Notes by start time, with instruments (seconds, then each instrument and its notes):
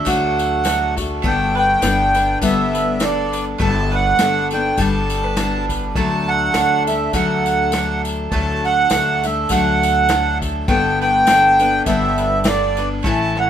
Already playing: mandolin A3 F#4 A4
0.05 upright bass D2, steel-string acoustic guitar D3 F#3 A3 D4 F#4, mandolin F#5, accordion F#5, kick, ride, tambourine
0.38 mandolin A4, ride, tambourine
0.64 steel-string acoustic guitar F#3 A3 D4 F#4, mandolin F#4, snare, ride, tambourine
0.97 steel-string acoustic guitar A3 D4 F#4, mandolin A4, kick, ride, tambourine
1.22 upright bass G1, steel-string acoustic guitar G3 B3 D4 A4, mandolin A3, kick, ride
1.26 accordion G5
1.55 mandolin B4, accordion G5, ride, tambourine
1.81 upright bass G1, steel-string acoustic guitar G3 B3 D4 A4, mandolin D4, snare, ride, tambourine
2.14 steel-string acoustic guitar D4 A4, mandolin B4, ride, tambourine
2.19 steel-string acoustic guitar B3
2.41 upright bass G1, steel-string acoustic guitar G3 B3 D4 A4, accordion E5, kick, ride, tambourine
2.73 mandolin B4, ride, tambourine
3.00 steel-string acoustic guitar G3 B3 D4 A4, mandolin D4, snare, ride, tambourine
3.04 accordion D5
3.32 mandolin B4, ride, tambourine
3.58 upright bass G1, steel-string acoustic guitar G3 B3 D4 A4, mandolin A3, accordion A5, kick, ride
3.91 mandolin B4, accordion F#5, ride, tambourine
4.19 upright bass G1, steel-string acoustic guitar G3 B3 D4 A4, mandolin D4, snare, ride, tambourine
4.51 steel-string acoustic guitar D4 A4, mandolin B4, accordion G5, ride, tambourine
4.56 steel-string acoustic guitar B3
4.77 upright bass G1, steel-string acoustic guitar G3 B3 D4 A4, mandolin G5, accordion A5, kick, ride, tambourine
5.10 mandolin A4, ride, tambourine
5.23 mandolin B4
5.36 steel-string acoustic guitar G3 B3 D4 A4, mandolin D4, snare, ride, tambourine
5.69 mandolin B4, kick, ride, tambourine
5.95 upright bass D2, steel-string acoustic guitar D3 F#3 A3 D4 A4, mandolin A3, accordion A5, kick, ride
6.27 mandolin A4, accordion F#5, ride
6.54 upright bass D2, steel-string acoustic guitar F#3 A3 D4, mandolin D4, snare, ride, tambourine
6.58 steel-string acoustic guitar A4
6.87 steel-string acoustic guitar A3 D4 A4, mandolin A4, accordion E5, ride, tambourine
7.13 upright bass D2, steel-string acoustic guitar D3 F#3 A3 D4 A4, mandolin F#5, accordion F#5, kick, ride, tambourine
7.46 mandolin A4, ride, tambourine
7.72 steel-string acoustic guitar F#3 A3 D4 A4, mandolin D4, snare, ride, tambourine
8.05 mandolin A4, ride, tambourine
8.31 upright bass D2, steel-string acoustic guitar D3 F#3 A3 D4 A4, mandolin A3, accordion A5, kick, ride
8.65 mandolin A4, accordion F#5, ride, tambourine
8.90 upright bass D2, steel-string acoustic guitar F#3 A3 D4 A4, mandolin D4, snare, ride, tambourine
9.23 steel-string acoustic guitar A3 D4 A4, mandolin A4, accordion E5, ride, tambourine
9.49 upright bass D2, steel-string acoustic guitar D3 F#3 A3 D4 A4, accordion F#5, mandolin F#5, kick, ride, tambourine
9.82 mandolin A4, ride, tambourine
10.09 steel-string acoustic guitar F#3 A3 D4 A4, mandolin D4, snare, ride, tambourine
10.42 mandolin A4, kick, ride, tambourine
10.68 upright bass G1, steel-string acoustic guitar G3 B3 D4 A4, mandolin A3, accordion G5, kick, ride
11.01 mandolin B4, accordion G5, ride, tambourine
11.27 upright bass G1, steel-string acoustic guitar G3 B3 D4 A4, mandolin D4, snare, ride, tambourine
11.59 steel-string acoustic guitar B3 D4 A4, mandolin B4, ride, tambourine
11.86 upright bass G1, steel-string acoustic guitar G3 B3 D4 A4, accordion E5, mandolin G5, kick, ride, tambourine
12.18 mandolin B4, ride, tambourine
12.44 steel-string acoustic guitar G3 B3 D4, mandolin D4, accordion D5, snare, ride, tambourine
12.48 steel-string acoustic guitar A4
12.77 steel-string acoustic guitar D4 A4, mandolin B4, ride, tambourine
12.81 steel-string acoustic guitar B3
13.03 upright bass A1, steel-string acoustic guitar A2 E3 A3 C#4, mandolin A3, accordion A5, kick, snare, tambourine
13.07 steel-string acoustic guitar E4 A4
13.35 mandolin C#5, snare
13.39 accordion F#5